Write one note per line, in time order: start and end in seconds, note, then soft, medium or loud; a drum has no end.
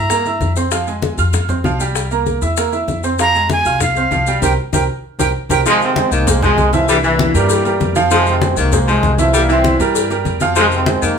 0.00 0.37 G2 medium
0.00 0.53 A#5 medium
0.10 0.23 A#3 medium
0.10 0.23 A#4 medium
0.10 0.23 A#5 medium
0.10 high bongo medium
0.10 high conga soft
0.10 maracas medium
0.26 0.51 E4 medium
0.26 0.51 E5 medium
0.26 0.51 E6 medium
0.26 high bongo soft
0.26 high conga soft
0.26 maracas soft
0.40 1.12 F2 medium
0.40 high bongo soft
0.40 low bongo medium
0.40 high conga medium
0.40 maracas soft
0.56 0.69 C4 medium
0.56 0.69 C5 medium
0.56 0.70 C6 medium
0.56 high bongo soft
0.56 maracas medium
0.71 0.84 F3 medium
0.71 0.85 F4 medium
0.71 0.85 F5 medium
0.71 high bongo medium
0.71 high conga soft
0.71 maracas medium
0.87 1.13 G#3 medium
0.87 1.13 G#4 medium
0.87 1.13 G#5 medium
0.87 high conga soft
0.87 maracas soft
1.02 high bongo medium
1.02 high conga medium
1.02 maracas soft
1.18 1.61 F2 medium
1.18 1.44 F4 medium
1.18 1.44 F5 medium
1.18 1.44 F6 medium
1.18 high bongo soft
1.18 high conga soft
1.18 maracas medium
1.33 high bongo medium
1.33 high conga soft
1.33 low conga medium
1.33 maracas medium
1.49 1.62 C4 medium
1.49 1.62 C5 medium
1.49 1.62 C6 medium
1.49 high bongo soft
1.49 high conga soft
1.49 low conga medium
1.49 maracas soft
1.64 2.36 C2 medium
1.64 1.77 F3 medium
1.64 1.77 F4 medium
1.64 1.78 F5 medium
1.64 high bongo soft
1.64 low bongo medium
1.64 high conga medium
1.64 maracas soft
1.80 2.06 G3 medium
1.80 2.06 G4 medium
1.80 2.06 G5 medium
1.80 high bongo soft
1.80 maracas medium
1.95 high bongo medium
1.95 high conga soft
1.95 maracas medium
2.11 2.36 A#3 medium
2.11 2.37 A#4 medium
2.11 2.37 A#5 medium
2.11 high conga soft
2.11 maracas soft
2.26 high bongo medium
2.26 high conga medium
2.26 maracas soft
2.41 2.85 E2 medium
2.41 2.54 E4 medium
2.41 2.55 E5 medium
2.41 2.55 E6 medium
2.41 high bongo soft
2.41 high conga soft
2.41 maracas medium
2.57 2.70 A#3 medium
2.57 2.70 A#4 medium
2.57 2.70 A#5 medium
2.57 high bongo medium
2.57 high conga soft
2.57 maracas loud
2.72 2.98 E4 medium
2.72 2.98 E5 medium
2.72 2.98 E6 medium
2.72 high bongo soft
2.72 high conga soft
2.72 maracas soft
2.88 3.60 F2 medium
2.88 high bongo soft
2.88 low bongo medium
2.88 high conga medium
2.88 maracas soft
3.03 3.16 C4 medium
3.03 3.17 C5 medium
3.03 3.17 C6 medium
3.03 high bongo soft
3.03 maracas medium
3.19 3.32 F3 medium
3.19 3.32 F4 medium
3.19 3.32 F5 medium
3.19 3.49 A#5 loud
3.19 high bongo medium
3.19 high conga soft
3.19 maracas medium
3.34 3.60 G#3 medium
3.34 3.61 G#4 medium
3.34 3.61 G#5 medium
3.34 high conga soft
3.34 maracas soft
3.50 3.80 G#5 loud
3.50 high bongo medium
3.50 high conga loud
3.50 maracas soft
3.65 4.08 C2 medium
3.65 3.91 F4 medium
3.65 3.91 F5 medium
3.65 3.91 F6 medium
3.65 high bongo soft
3.65 maracas medium
3.80 4.39 F5 medium
3.80 high bongo medium
3.80 high conga soft
3.80 low conga medium
3.80 maracas medium
3.96 4.09 C4 medium
3.96 4.09 C5 medium
3.96 4.09 C6 medium
3.96 high bongo soft
3.96 high conga soft
3.96 maracas soft
4.11 4.40 C2 medium
4.11 4.25 F3 medium
4.11 4.25 F4 medium
4.11 4.25 F5 medium
4.11 high bongo soft
4.11 low bongo medium
4.11 high conga medium
4.11 maracas soft
4.26 4.40 G3 medium
4.26 4.40 G4 medium
4.26 4.40 G5 medium
4.26 high bongo soft
4.26 maracas medium
4.42 4.54 C2 medium
4.42 4.53 G4 medium
4.42 4.53 A#4 medium
4.42 4.53 C5 medium
4.42 4.53 G5 loud
4.42 low bongo medium
4.42 high conga medium
4.42 maracas loud
4.73 4.84 C2 medium
4.73 4.83 G4 medium
4.73 4.83 A#4 medium
4.73 4.84 C5 medium
4.73 4.84 G5 medium
4.73 low bongo loud
4.73 high conga loud
4.73 maracas loud
5.19 5.30 C2 medium
5.19 5.29 G4 medium
5.19 5.29 A#4 medium
5.19 5.29 C5 medium
5.19 5.30 G5 medium
5.19 low bongo loud
5.19 high conga medium
5.19 maracas loud
5.49 5.61 C2 medium
5.49 5.60 G4 medium
5.49 5.60 A#4 loud
5.49 5.60 C5 medium
5.49 5.61 G5 loud
5.49 low bongo loud
5.49 high conga medium
5.49 maracas loud
5.65 6.24 C3 medium
5.65 5.82 D#3 medium
5.65 5.91 F3 medium
5.65 5.90 F3 loud
5.65 5.81 G#3 loud
5.65 5.91 F4 medium
5.65 5.91 F5 medium
5.65 cowbell loud
5.65 high conga soft
5.65 maracas medium
5.81 6.12 D#3 medium
5.81 6.40 G#3 medium
5.81 6.10 C4 loud
5.81 high conga soft
5.81 maracas soft
5.96 6.22 G#3 medium
5.96 6.22 G#4 medium
5.96 6.22 C5 medium
5.96 cowbell medium
5.96 high conga loud
5.96 maracas soft
6.11 6.54 C2 medium
6.11 6.28 D#3 medium
6.11 6.43 D#3 medium
6.11 6.43 A#3 loud
6.11 high conga soft
6.11 maracas medium
6.27 6.40 G#3 medium
6.27 6.40 G#4 medium
6.27 6.40 C5 medium
6.27 cowbell loud
6.27 high conga soft
6.27 low conga medium
6.27 maracas loud
6.42 6.86 C3 medium
6.42 6.86 D#3 medium
6.42 6.67 F3 medium
6.42 6.67 G#3 medium
6.42 6.71 G#3 loud
6.42 6.68 G#4 medium
6.42 6.68 C5 medium
6.42 high conga soft
6.42 low conga medium
6.42 maracas soft
6.57 7.28 C2 medium
6.57 cowbell medium
6.57 high conga medium
6.57 maracas soft
6.73 6.98 E3 medium
6.73 6.87 F3 loud
6.73 6.98 E4 loud
6.73 6.99 E5 medium
6.73 cowbell medium
6.73 high conga medium
6.73 maracas medium
6.88 7.04 G2 medium
6.88 7.04 A#2 medium
6.88 6.96 E3 loud
6.88 6.97 G3 loud
6.88 cowbell loud
6.88 high conga soft
6.88 maracas loud
7.04 7.62 G2 medium
7.04 7.35 A#2 medium
7.04 7.71 E3 medium
7.04 7.32 E3 medium
7.04 7.29 E3 medium
7.04 7.29 E4 medium
7.04 7.30 E5 loud
7.04 high conga soft
7.04 maracas soft
7.19 cowbell medium
7.19 high conga loud
7.19 maracas soft
7.34 7.77 G2 medium
7.34 7.93 A#2 medium
7.34 7.93 E3 medium
7.34 7.60 G3 medium
7.34 7.92 G3 loud
7.34 7.60 G4 medium
7.34 7.60 A#4 medium
7.34 cowbell medium
7.34 maracas medium
7.49 cowbell loud
7.49 high conga soft
7.49 maracas loud
7.65 7.91 G3 medium
7.65 7.91 G4 medium
7.65 7.91 A#4 medium
7.65 cowbell medium
7.65 high conga soft
7.65 maracas soft
7.80 8.52 F2 medium
7.80 cowbell medium
7.80 high conga loud
7.80 maracas soft
7.96 8.08 F3 loud
7.96 8.09 F4 medium
7.96 8.09 F5 loud
7.96 cowbell medium
7.96 high conga medium
7.96 maracas medium
8.11 8.69 C3 medium
8.11 8.27 D#3 medium
8.11 8.35 F3 loud
8.11 8.36 F3 medium
8.11 8.26 G#3 loud
8.11 8.37 F4 medium
8.11 8.37 F5 medium
8.11 cowbell loud
8.11 high conga soft
8.11 maracas medium
8.26 8.58 D#3 medium
8.26 8.85 G#3 medium
8.26 8.55 C4 loud
8.26 high conga soft
8.26 maracas soft
8.42 8.67 G#3 medium
8.42 8.68 G#4 medium
8.42 8.68 C5 medium
8.42 cowbell medium
8.42 high conga loud
8.42 maracas soft
8.57 9.00 C2 loud
8.57 8.73 D#3 medium
8.57 8.88 D#3 medium
8.57 8.86 A#3 medium
8.57 high conga soft
8.57 maracas medium
8.72 8.85 G#3 medium
8.72 8.85 G#4 medium
8.72 8.86 C5 medium
8.72 cowbell loud
8.72 high conga soft
8.72 low conga medium
8.72 maracas medium
8.88 9.31 C3 medium
8.88 9.31 D#3 medium
8.88 9.12 F3 medium
8.88 9.16 G#3 loud
8.88 9.13 G#3 medium
8.88 9.14 G#4 medium
8.88 9.14 C5 medium
8.88 high conga soft
8.88 maracas soft
9.03 9.74 C2 medium
9.03 cowbell medium
9.03 high conga loud
9.03 maracas soft
9.18 9.44 E3 loud
9.18 9.33 F3 medium
9.18 9.44 E4 medium
9.18 9.44 E5 medium
9.18 cowbell medium
9.18 high conga medium
9.18 maracas medium
9.33 9.51 E3 medium
9.33 9.42 G3 loud
9.33 9.51 G3 medium
9.33 9.50 A#3 loud
9.33 cowbell loud
9.33 high conga soft
9.33 maracas medium
9.49 10.16 E3 medium
9.49 9.74 E3 medium
9.49 10.08 E3 medium
9.49 10.08 G3 medium
9.49 9.79 C4 medium
9.49 9.75 E4 medium
9.49 9.75 E5 medium
9.49 high conga soft
9.49 maracas soft
9.64 cowbell medium
9.64 high conga loud
9.64 maracas soft
9.79 10.22 G2 medium
9.79 10.05 G3 medium
9.79 10.05 G4 medium
9.79 10.05 A#4 medium
9.79 cowbell medium
9.79 maracas medium
9.95 cowbell loud
9.95 high conga soft
9.95 maracas loud
10.10 10.36 G3 medium
10.10 10.36 G4 medium
10.10 10.36 A#4 medium
10.10 cowbell medium
10.10 high conga soft
10.10 maracas soft
10.25 10.96 F2 medium
10.25 cowbell medium
10.25 high conga medium
10.25 maracas soft
10.40 10.54 F3 medium
10.40 10.54 F4 medium
10.40 10.54 F5 medium
10.40 cowbell medium
10.40 high conga medium
10.40 maracas medium
10.56 11.15 C3 medium
10.56 10.73 D#3 medium
10.56 10.80 F3 loud
10.56 10.82 F3 medium
10.56 10.65 G#3 loud
10.56 10.82 F4 medium
10.56 10.82 F5 medium
10.56 cowbell loud
10.56 high conga soft
10.56 maracas medium
10.71 11.03 D#3 medium
10.71 11.19 G#3 medium
10.71 11.02 C4 loud
10.71 high conga soft
10.71 maracas soft
10.86 11.12 G#3 medium
10.86 11.12 G#4 medium
10.86 11.12 C5 medium
10.86 cowbell medium
10.86 high conga loud
10.86 maracas soft
11.02 11.19 F2 medium
11.02 11.18 D#3 medium
11.02 11.19 D#3 medium
11.02 11.19 A#3 loud
11.02 high conga soft
11.02 maracas medium